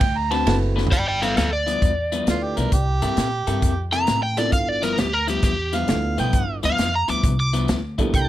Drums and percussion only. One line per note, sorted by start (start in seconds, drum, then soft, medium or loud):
0.01 kick loud
0.01 snare soft
0.01 ride medium
0.31 snare soft
0.31 ride medium
0.47 snare loud
0.47 ride medium
0.78 snare medium
0.87 floor tom medium
0.92 kick loud
0.92 closed hi-hat medium
1.22 snare soft
1.22 closed hi-hat medium
1.37 snare loud
1.37 closed hi-hat medium
1.68 closed hi-hat medium
1.82 kick loud
1.82 closed hi-hat medium
2.12 closed hi-hat medium
2.27 snare medium
2.27 closed hi-hat medium
2.57 snare soft
2.57 closed hi-hat medium
2.72 kick loud
2.72 closed hi-hat medium
3.02 closed hi-hat medium
3.17 snare loud
3.17 closed hi-hat medium
3.47 closed hi-hat medium
3.62 kick loud
3.62 closed hi-hat medium
3.92 closed hi-hat medium
4.07 snare loud
4.07 closed hi-hat medium
4.37 snare soft
4.37 closed hi-hat medium
4.52 kick loud
4.52 closed hi-hat medium
4.83 snare soft
4.83 closed hi-hat medium
4.98 snare loud
4.98 closed hi-hat medium
5.28 closed hi-hat medium
5.43 kick loud
5.43 snare soft
5.43 closed hi-hat medium
5.73 snare soft
5.73 closed hi-hat medium
5.88 snare loud
5.88 closed hi-hat medium
6.18 snare soft
6.18 closed hi-hat medium
6.33 kick loud
6.33 closed hi-hat medium
6.63 closed hi-hat medium
6.78 snare medium
6.78 closed hi-hat medium
7.08 closed hi-hat medium
7.23 kick loud
7.23 closed hi-hat medium
7.53 snare soft
7.53 closed hi-hat medium
7.68 snare loud
7.68 closed hi-hat medium
7.98 kick medium
7.98 closed hi-hat medium
8.14 kick loud
8.14 closed hi-hat medium